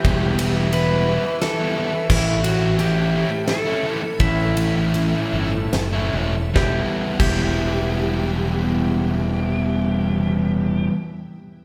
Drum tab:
CC |------------|x-----------|------------|---x--------|
RD |x-x-x---x---|--x-x---x---|x-x-x---x---|------------|
SD |--------o---|--------o---|--------o---|o-----------|
BD |o-----------|o-----------|o-----------|o--o--------|

CC |------------|
RD |------------|
SD |------------|
BD |------------|